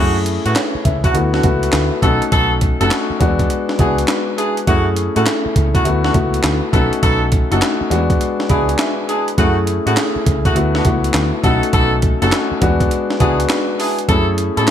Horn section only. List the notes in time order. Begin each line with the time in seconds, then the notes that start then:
Already playing: A3 E4 F#4
0.45 A3 E4 F#4
1.04 A3 E4 F#4
1.33 B3 D4 F#4
2.02 B3 D#4 A4
2.32 B3 D#4 A4
2.80 B3 D#4 A4
3.79 D4 E4 G#4
4.38 D4 E4 G#4
4.67 A3 E4 F#4
5.16 A3 E4 F#4
5.74 A3 E4 F#4
6.04 B3 D4 F#4
6.73 B3 D#4 A4
7.03 B3 D#4 A4
7.51 B3 D#4 A4
8.50 D4 E4 G#4
9.08 D4 E4 G#4
9.38 A3 E4 F#4
9.86 A3 E4 F#4
10.45 A3 E4 F#4
10.75 B3 D4 F#4
11.44 B3 D#4 A4
11.73 B3 D#4 A4
12.22 B3 D#4 A4
13.20 D4 E4 G#4
13.79 D4 E4 G#4
14.08 E4 F#4 A4
14.57 E4 F#4 A4